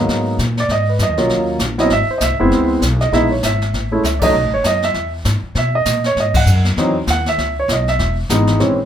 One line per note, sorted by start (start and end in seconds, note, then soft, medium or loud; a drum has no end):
0.00 0.36 G#2 medium
0.00 0.36 F#3 medium
0.00 0.36 A#3 medium
0.00 0.36 B3 soft
0.00 0.36 D#4 medium
0.08 0.37 G#2 medium
0.08 brush sweep soft
0.08 kick soft
0.08 snare soft
0.39 0.68 A#2 medium
0.39 kick soft
0.39 snare medium
0.39 hi-hat pedal medium
0.57 0.70 D5 medium
0.57 snare soft
0.69 0.98 G#2 medium
0.69 0.88 D#5 medium
0.69 brush sweep soft
0.69 kick soft
0.69 snare soft
0.89 1.00 B4 medium
0.99 1.09 F#2 medium
0.99 1.46 D#5 medium
0.99 kick soft
0.99 snare medium
0.99 hi-hat pedal medium
1.09 1.18 D#2 soft
1.17 1.28 B1 medium
1.17 1.58 F#3 medium
1.17 1.57 A#3 medium
1.17 1.57 C#4 medium
1.17 1.58 F4 medium
1.17 snare soft
1.29 1.58 D#2 medium
1.29 brush sweep soft
1.29 kick soft
1.29 snare soft
1.59 1.89 A#1 medium
1.59 kick soft
1.59 snare medium
1.59 hi-hat pedal medium
1.78 1.89 F#3 medium
1.78 1.89 B3 medium
1.78 1.89 C4 medium
1.78 1.89 E4 medium
1.78 1.91 D#5 medium
1.78 snare soft
1.90 2.07 G#1 medium
1.90 2.09 E5 loud
1.90 brush sweep soft
1.90 kick soft
1.90 snare soft
2.11 2.21 C5 medium
2.18 2.31 C2 medium
2.18 2.20 D#5 medium
2.18 kick soft
2.18 snare medium
2.18 hi-hat pedal medium
2.23 2.67 E5 medium
2.30 2.40 G#1 medium
2.40 2.50 F#1 medium
2.40 2.79 G#3 medium
2.40 2.79 B3 medium
2.40 2.80 C4 medium
2.40 2.80 E4 medium
2.51 2.80 C#2 medium
2.51 brush sweep soft
2.51 kick soft
2.51 snare soft
2.82 3.11 B1 medium
2.82 kick soft
2.82 snare medium
2.82 hi-hat pedal medium
3.01 3.12 D#5 medium
3.01 snare soft
3.12 3.41 A#1 medium
3.12 3.29 G#3 medium
3.12 3.29 B3 medium
3.12 3.29 D#4 medium
3.12 3.29 E4 medium
3.12 3.31 E5 medium
3.12 brush sweep medium
3.12 kick soft
3.12 snare soft
3.31 3.42 C#5 medium
3.43 3.72 G#1 medium
3.43 3.89 E5 medium
3.43 kick soft
3.43 snare medium
3.43 hi-hat pedal medium
3.62 snare soft
3.73 4.02 A1 medium
3.73 brush sweep soft
3.73 kick soft
3.73 snare soft
3.92 4.02 G#3 medium
3.92 4.02 A3 medium
3.92 4.02 C#4 medium
3.92 4.03 E4 medium
4.03 4.33 C#2 medium
4.03 4.22 E5 medium
4.03 kick soft
4.03 snare medium
4.03 hi-hat pedal medium
4.19 4.33 F#3 medium
4.19 4.33 A3 medium
4.19 4.33 C#4 medium
4.19 4.33 D#4 medium
4.19 4.21 D5 medium
4.19 4.51 D#5 medium
4.19 kick medium
4.19 crash medium
4.34 4.43 B1 medium
4.34 brush sweep medium
4.43 4.53 A1 medium
4.53 4.63 F#1 medium
4.53 4.65 C#5 medium
4.64 4.94 F#2 medium
4.64 4.83 D#5 medium
4.64 kick soft
4.64 snare medium
4.64 hi-hat pedal soft
4.82 5.12 E5 medium
4.82 snare soft
4.94 5.24 E2 medium
4.94 brush sweep soft
4.94 kick soft
4.94 snare soft
5.25 5.42 G#2 medium
5.25 kick soft
5.25 snare medium
5.25 hi-hat pedal soft
5.43 muted upright bass stroke soft
5.55 5.85 B2 medium
5.55 5.74 E5 medium
5.55 brush sweep soft
5.55 kick soft
5.55 snare soft
5.75 6.03 D#5 medium
5.85 6.15 A#2 medium
5.85 kick soft
5.85 snare medium
5.85 hi-hat pedal medium
6.04 6.17 C#5 medium
6.04 snare soft
6.16 6.45 G#2 medium
6.16 6.36 D#5 medium
6.16 brush sweep soft
6.16 kick soft
6.16 snare soft
6.34 6.64 F#5 medium
6.34 kick medium
6.34 crash medium
6.45 6.76 F#2 medium
6.45 hi-hat pedal medium
6.65 snare soft
6.77 7.06 E2 medium
6.77 6.94 E3 medium
6.77 6.94 F#3 medium
6.77 6.94 C4 medium
6.77 6.94 D#4 medium
6.77 brush sweep soft
6.77 kick soft
6.77 snare soft
7.07 7.37 D#2 medium
7.07 7.27 F#5 medium
7.07 kick soft
7.07 snare medium
7.07 hi-hat pedal soft
7.26 7.56 E5 medium
7.26 snare soft
7.38 7.67 C#2 medium
7.38 brush sweep soft
7.38 kick soft
7.38 snare soft
7.59 7.70 C#5 medium
7.68 7.98 B1 loud
7.68 kick soft
7.68 snare medium
7.68 hi-hat pedal soft
7.72 7.88 D#5 medium
7.88 8.16 E5 medium
7.88 snare soft
7.99 8.28 E1 medium
7.99 brush sweep soft
7.99 kick soft
7.99 snare soft
8.29 8.59 G#1 medium
8.29 8.58 E3 medium
8.29 8.58 G#3 medium
8.29 8.60 B3 medium
8.29 8.60 D#4 medium
8.29 kick soft
8.29 snare medium
8.29 hi-hat pedal medium
8.47 snare soft
8.59 8.85 A#1 medium
8.59 8.76 E3 medium
8.59 8.76 G#3 medium
8.59 8.76 C4 medium
8.59 8.76 C#4 medium
8.59 brush sweep soft
8.59 kick soft
8.59 snare soft